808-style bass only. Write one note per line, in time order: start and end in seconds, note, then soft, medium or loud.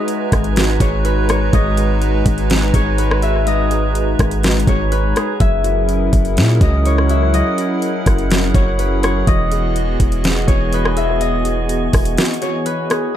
0.32 0.79 G#1 loud
0.80 1.50 G#1 loud
1.53 2.23 G#1 loud
2.26 2.72 G#1 loud
2.74 4.15 G#1 loud
4.19 4.66 G#1 loud
4.67 5.14 G#1 loud
5.40 6.10 F#1 loud
6.13 6.38 F#1 loud
6.37 6.60 A#2 loud
6.61 7.42 C#2 loud
8.06 8.53 F#1 loud
8.55 9.24 F#1 loud
9.27 9.97 E1 loud
10.00 10.46 E1 loud
10.48 11.89 E1 loud
11.93 12.17 E1 loud